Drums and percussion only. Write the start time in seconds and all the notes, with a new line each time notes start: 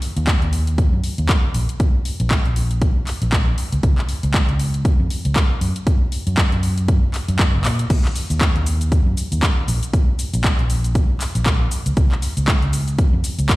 0.02 open hi-hat
0.17 closed hi-hat
0.27 kick, clap, closed hi-hat
0.42 closed hi-hat
0.53 open hi-hat
0.67 closed hi-hat
0.78 kick, closed hi-hat
1.04 open hi-hat
1.18 closed hi-hat
1.29 kick, clap, closed hi-hat
1.54 open hi-hat
1.69 closed hi-hat
1.80 kick, closed hi-hat
2.05 open hi-hat
2.20 closed hi-hat
2.31 kick, clap, closed hi-hat
2.45 closed hi-hat
2.56 open hi-hat
2.71 closed hi-hat
2.82 kick, closed hi-hat
3.07 clap, open hi-hat
3.22 closed hi-hat
3.32 kick, clap, closed hi-hat
3.58 open hi-hat
3.72 closed hi-hat
3.83 kick, closed hi-hat
3.98 clap
4.09 open hi-hat
4.23 closed hi-hat
4.34 kick, clap, closed hi-hat
4.49 closed hi-hat
4.60 open hi-hat
4.74 closed hi-hat
4.85 kick, closed hi-hat
5.10 open hi-hat
5.25 closed hi-hat
5.36 kick, clap, closed hi-hat
5.61 open hi-hat
5.76 closed hi-hat
5.87 kick, closed hi-hat
6.12 open hi-hat
6.27 closed hi-hat
6.37 kick, clap, closed hi-hat
6.52 closed hi-hat
6.63 open hi-hat
6.78 closed hi-hat
6.88 kick, closed hi-hat
7.14 clap, open hi-hat
7.28 closed hi-hat
7.39 kick, clap, closed hi-hat
7.65 clap, open hi-hat
7.79 closed hi-hat
7.90 kick, closed hi-hat, crash, cabasa
8.05 clap
8.16 open hi-hat, cabasa
8.30 closed hi-hat, cabasa
8.41 kick, clap, closed hi-hat, cabasa
8.56 closed hi-hat
8.66 open hi-hat, cabasa
8.81 closed hi-hat, cabasa
8.92 kick, closed hi-hat, cabasa
9.17 open hi-hat, cabasa
9.32 closed hi-hat, cabasa
9.43 kick, clap, closed hi-hat, cabasa
9.68 open hi-hat, cabasa
9.83 closed hi-hat, cabasa
9.93 kick, closed hi-hat, cabasa
10.19 open hi-hat, cabasa
10.34 closed hi-hat, cabasa
10.44 kick, clap, closed hi-hat, cabasa
10.59 closed hi-hat
10.70 open hi-hat, cabasa
10.84 closed hi-hat, cabasa
10.95 kick, closed hi-hat, cabasa
11.21 clap, open hi-hat, cabasa
11.35 closed hi-hat, cabasa
11.46 kick, clap, closed hi-hat, cabasa
11.71 open hi-hat, cabasa
11.86 closed hi-hat, cabasa
11.97 kick, closed hi-hat, cabasa
12.12 clap
12.22 open hi-hat, cabasa
12.37 closed hi-hat, cabasa
12.48 kick, clap, closed hi-hat, cabasa
12.62 closed hi-hat
12.73 open hi-hat, cabasa
12.88 closed hi-hat, cabasa
12.99 kick, closed hi-hat, cabasa
13.24 open hi-hat, cabasa
13.39 closed hi-hat, cabasa
13.49 kick, clap, closed hi-hat, cabasa